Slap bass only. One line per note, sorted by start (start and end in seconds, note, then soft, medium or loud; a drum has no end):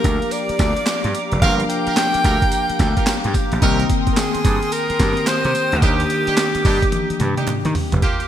0.05 0.18 D2 medium
0.49 muted slap bass stroke soft
0.59 0.72 D2 medium
1.05 1.12 G2 loud
1.32 1.39 F1 medium
1.42 1.63 G1 loud
1.87 muted slap bass stroke soft
2.15 muted slap bass stroke soft
2.25 2.38 D2 loud
2.70 muted slap bass stroke soft
2.80 2.93 D2 medium
3.25 3.32 G2 medium
3.52 3.60 A#1 medium
3.62 3.83 C2 loud
4.07 muted slap bass stroke soft
4.35 muted slap bass stroke soft
4.45 4.58 G2 medium
4.90 muted slap bass stroke soft
5.00 5.13 G2 medium
5.45 5.52 C3 loud
5.73 5.80 D2 medium
5.82 6.03 D#2 loud
6.28 muted slap bass stroke soft
6.55 muted slap bass stroke soft
6.65 6.78 G2 medium
7.10 muted slap bass stroke soft
7.20 7.33 G2 medium
7.65 7.73 D#3 medium
7.93 8.00 F1 loud